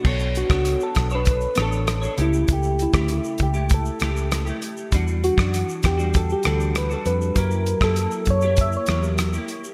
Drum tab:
CC |x---------------|----------------|----------------|----------------|
HH |--x-x-x-x-x-x-x-|x-x-x-x-x-x-x-x-|x-x-x-x-x-x-x-x-|x-x-x-x-x-x-x-x-|
SH |-xxxxxxxxxxxxxxx|xxxxxxxxxxxxxxxx|xxxxxxxxxxxxxxxx|xxxxxxxxxxxxxxxx|
SD |---r--r---r-r---|---r------r-r---|---r--r---r-r---|---r------r-r---|
BD |o--o--o-o-------|o--o--o-o-------|o--o--o-o-------|o--o--o-o-------|